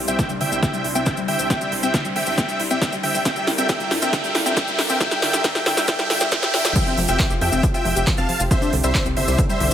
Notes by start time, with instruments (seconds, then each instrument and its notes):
Already playing: analog synth pad C3 G3 D4 E4 C5, riser
0.08 analog synth bass C2, synth arpeggio sound C4, supersaw synth E5 G5, closed hi-hat, cabasa
0.19 synth arpeggio sound D3, kick, snare, closed hi-hat, cabasa
0.29 analog synth bass C2, synth arpeggio sound G3, closed hi-hat, cabasa
0.41 analog synth bass G1, synth arpeggio sound D3, supersaw synth E5 G5, open hi-hat
0.52 analog synth bass C2, synth arpeggio sound C4, closed hi-hat, cabasa
0.63 synth arpeggio sound D3, supersaw synth E5 G5, kick, snare, closed hi-hat, cabasa
0.73 synth arpeggio sound G3, closed hi-hat, cabasa
0.84 analog synth bass C2, synth arpeggio sound E4, open hi-hat
0.95 analog synth bass C2, synth arpeggio sound C4, supersaw synth E5 G5, closed hi-hat, cabasa
1.06 synth arpeggio sound D3, kick, snare, closed hi-hat, cabasa
1.17 analog synth bass C2, synth arpeggio sound G3, closed hi-hat, cabasa
1.28 synth arpeggio sound D3, supersaw synth E5 G5, open hi-hat
1.39 analog synth bass C2, synth arpeggio sound C4, cabasa
1.50 synth arpeggio sound D3, supersaw synth E5 G5, kick, snare, closed hi-hat, cabasa
1.61 synth arpeggio sound G3, closed hi-hat, cabasa
1.72 analog synth bass C2, synth arpeggio sound E4, open hi-hat
1.83 analog synth bass C2, synth arpeggio sound C4, supersaw synth E5 G5, closed hi-hat, cabasa
1.94 synth arpeggio sound D3, kick, snare, closed hi-hat, cabasa
2.05 analog synth bass C2, synth arpeggio sound G3, closed hi-hat, cabasa
2.16 analog synth bass G1, synth arpeggio sound D3, supersaw synth E5 G5, open hi-hat
2.26 analog synth bass C2, synth arpeggio sound C4, open hi-hat, cabasa
2.38 synth arpeggio sound D3, supersaw synth E5 G5, kick, snare, closed hi-hat, cabasa
2.49 synth arpeggio sound G3, closed hi-hat, cabasa
2.60 analog synth bass C2, synth arpeggio sound E4, open hi-hat
2.71 analog synth bass C2, synth arpeggio sound C4, supersaw synth E5 G5, closed hi-hat, cabasa
2.82 synth arpeggio sound D3, kick, snare, closed hi-hat, cabasa
2.92 analog synth bass C2, synth arpeggio sound G3, closed hi-hat, cabasa
3.03 synth arpeggio sound D3, supersaw synth E5 G5, open hi-hat
3.14 analog synth bass C2, synth arpeggio sound C4, cabasa
3.25 synth arpeggio sound D3, analog synth pad D4 F4 A4 A#4, supersaw synth E5 G5, kick, snare, closed hi-hat, cabasa
3.36 synth arpeggio sound G3, closed hi-hat, cabasa
3.47 analog synth bass G1, synth arpeggio sound E4, snare, open hi-hat
3.58 analog synth bass G1, synth arpeggio sound C4, supersaw synth E5 G5, closed hi-hat, cabasa
3.69 synth arpeggio sound D3, supersaw synth E5 G5, kick, snare, closed hi-hat, cabasa
3.80 analog synth bass G1, synth arpeggio sound G3, closed hi-hat, cabasa
3.91 analog synth bass G2, synth arpeggio sound E4, snare, open hi-hat
4.02 analog synth bass G1, synth arpeggio sound C4, supersaw synth E5 G5, closed hi-hat, cabasa
4.13 synth arpeggio sound D3, supersaw synth E5 G5, kick, snare, closed hi-hat, cabasa
4.24 synth arpeggio sound G3, closed hi-hat, cabasa
4.35 analog synth bass G1, synth arpeggio sound E4, snare, open hi-hat
4.46 analog synth bass G1, synth arpeggio sound C4, supersaw synth E5 G5, closed hi-hat, cabasa
4.57 supersaw synth E5 G5, kick, snare, closed hi-hat, cabasa
4.68 analog synth bass G1, synth arpeggio sound G3, closed hi-hat, cabasa
4.79 synth arpeggio sound E4, snare, open hi-hat
4.89 analog synth bass G1, synth arpeggio sound C4, supersaw synth E5 G5, cabasa
5.00 synth arpeggio sound D3, supersaw synth E5 G5, kick, snare, closed hi-hat, cabasa
5.11 synth arpeggio sound G3, snare, closed hi-hat, cabasa
5.22 analog synth bass G1, synth arpeggio sound D3, supersaw synth E5 G5, snare, open hi-hat
5.33 analog synth bass G1, synth arpeggio sound G3, snare, closed hi-hat, cabasa
5.44 synth arpeggio sound D3, supersaw synth E5 G5, kick, snare, closed hi-hat, cabasa
5.55 analog synth bass G1, synth arpeggio sound G3, snare, closed hi-hat, cabasa
5.66 analog synth bass G2, synth arpeggio sound D3, supersaw synth E5 G5, snare, open hi-hat
5.77 analog synth bass G1, synth arpeggio sound G3, snare, open hi-hat, cabasa
5.88 synth arpeggio sound D3, supersaw synth E5 G5, kick, snare, closed hi-hat, cabasa
5.99 synth arpeggio sound G3, snare, closed hi-hat, cabasa
6.10 analog synth bass G1, synth arpeggio sound D3, supersaw synth E5 G5, snare, open hi-hat
6.20 analog synth bass G1, synth arpeggio sound G3, snare, cabasa
6.32 synth arpeggio sound D3, supersaw synth E5 G5, kick, snare, closed hi-hat, cabasa
6.43 analog synth bass G1, synth arpeggio sound G3, snare, closed hi-hat, cabasa
6.54 synth arpeggio sound D3, supersaw synth E5 G5, snare, open hi-hat
6.65 analog synth bass G2, synth arpeggio sound G3, snare, cabasa
6.76 synth arpeggio sound F3, analog synth pad C4 F4 G4, supersaw synth E5 G5, kick, closed hi-hat, crash, cabasa
6.87 synth arpeggio sound C4, closed hi-hat, cabasa
6.98 analog synth bass F1, synth arpeggio sound F3, open hi-hat
7.08 analog synth bass F1, synth arpeggio sound F4, supersaw synth E5 G5, closed hi-hat, cabasa
7.19 synth arpeggio sound F3, kick, clap, closed hi-hat, cabasa
7.30 analog synth bass F1, synth arpeggio sound G4, closed hi-hat, cabasa
7.41 analog synth bass F2, synth arpeggio sound F3, supersaw synth E5 G5, open hi-hat
7.52 analog synth bass F1, synth arpeggio sound C4, closed hi-hat, cabasa
7.63 synth arpeggio sound F3, kick, closed hi-hat, cabasa
7.74 synth arpeggio sound F4, supersaw synth E5 G5, closed hi-hat, cabasa
7.85 analog synth bass F1, synth arpeggio sound F3, open hi-hat
7.96 analog synth bass F1, synth arpeggio sound G4, closed hi-hat, cabasa
8.07 synth arpeggio sound F3, kick, clap, closed hi-hat, cabasa
8.17 analog synth bass F1, synth arpeggio sound C4, supersaw synth F5 A5, closed hi-hat, cabasa
8.29 synth arpeggio sound F3, open hi-hat
8.40 analog synth bass F1, synth arpeggio sound F4, cabasa
8.51 analog synth pad C3 C4 D4 E4, synth arpeggio sound D3, supersaw synth C5 E5, kick, closed hi-hat, cabasa
8.62 synth arpeggio sound D4, closed hi-hat, cabasa
8.73 analog synth bass C2, synth arpeggio sound D3, open hi-hat
8.84 analog synth bass C2, synth arpeggio sound G3, supersaw synth C5 E5, closed hi-hat, cabasa
8.95 synth arpeggio sound D3, kick, clap, closed hi-hat, cabasa
9.06 analog synth bass C2, synth arpeggio sound C4, closed hi-hat, cabasa
9.17 analog synth bass G1, synth arpeggio sound D3, supersaw synth C5 E5, open hi-hat
9.28 analog synth bass C2, synth arpeggio sound D4, open hi-hat, cabasa
9.38 synth arpeggio sound D3, kick, closed hi-hat, cabasa
9.49 synth arpeggio sound G3, supersaw synth C5 E5, closed hi-hat, cabasa
9.60 analog synth bass C2, synth arpeggio sound D3, open hi-hat